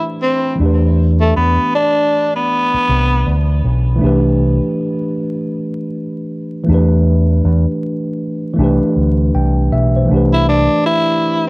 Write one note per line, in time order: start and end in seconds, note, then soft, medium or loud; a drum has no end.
0.00 0.54 E3 medium
0.00 0.55 A3 medium
0.00 0.57 D4 medium
0.00 0.58 G4 medium
0.00 0.59 B4 medium
0.23 0.56 C4 medium
0.55 3.57 E3 medium
0.55 3.58 A3 medium
0.60 1.32 E2 loud
0.60 3.60 D4 medium
0.60 3.61 G4 medium
0.66 3.62 B4 medium
1.21 1.34 A3 medium
1.37 1.57 E2 medium
1.37 1.70 B3 medium
1.75 2.31 D4 medium
2.36 3.45 B3 medium
2.74 muted picked electric bass stroke soft
2.89 3.23 C2 medium
3.27 3.60 D2 medium
3.64 3.98 B1 medium
3.96 6.60 E3 medium
3.96 6.62 A3 medium
4.01 4.58 C2 loud
4.01 6.63 D4 medium
4.01 6.64 G4 medium
4.06 6.66 B4 medium
6.64 8.51 E3 medium
6.64 8.53 A3 medium
6.68 7.40 E2 medium
6.68 8.54 D4 medium
6.68 8.55 G4 medium
6.74 8.57 B4 medium
7.45 7.64 E2 medium
8.53 10.04 E3 medium
8.53 10.05 A3 medium
8.58 8.78 C2 loud
8.58 10.07 D4 medium
8.58 10.08 G4 medium
8.64 9.35 B4 medium
8.81 muted picked electric bass stroke soft
8.96 9.30 D2 medium
9.34 9.68 C2 medium
9.34 9.70 G5 medium
9.72 10.06 B1 medium
9.72 9.93 E5 medium
9.96 10.31 C5 medium
10.06 11.49 E3 medium
10.06 11.49 A3 medium
10.10 10.66 C2 medium
10.10 11.49 D4 medium
10.10 11.49 G4 medium
10.16 11.49 B4 medium
10.33 10.46 E4 medium
10.49 10.82 D4 medium
10.86 11.43 E4 medium